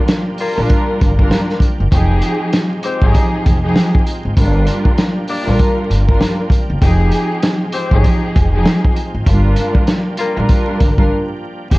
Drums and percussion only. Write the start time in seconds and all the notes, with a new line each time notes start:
0.08 snare, closed hi-hat
0.38 open hi-hat
0.70 kick, closed hi-hat
1.01 kick, closed hi-hat
1.19 kick
1.31 snare, closed hi-hat
1.49 snare
1.60 kick, closed hi-hat
1.92 kick, closed hi-hat
2.22 closed hi-hat
2.53 snare, closed hi-hat
2.83 closed hi-hat
3.02 kick
3.14 kick, closed hi-hat
3.46 kick, closed hi-hat
3.76 snare, closed hi-hat
3.95 kick
4.07 closed hi-hat
4.37 kick, closed hi-hat
4.67 closed hi-hat
4.85 kick
4.98 snare, closed hi-hat
5.28 open hi-hat
5.59 kick, closed hi-hat
5.91 closed hi-hat
6.09 kick
6.21 snare, closed hi-hat
6.50 kick, closed hi-hat
6.82 kick, closed hi-hat
7.12 closed hi-hat
7.43 snare, closed hi-hat
7.72 closed hi-hat
7.91 kick
8.04 kick, closed hi-hat
8.36 kick, closed hi-hat
8.66 snare, closed hi-hat
8.85 kick
8.96 closed hi-hat
9.26 kick, closed hi-hat
9.56 closed hi-hat
9.75 kick
9.87 snare, closed hi-hat
10.17 closed hi-hat
10.49 kick, closed hi-hat
10.80 kick, closed hi-hat
10.98 kick
11.71 kick, closed hi-hat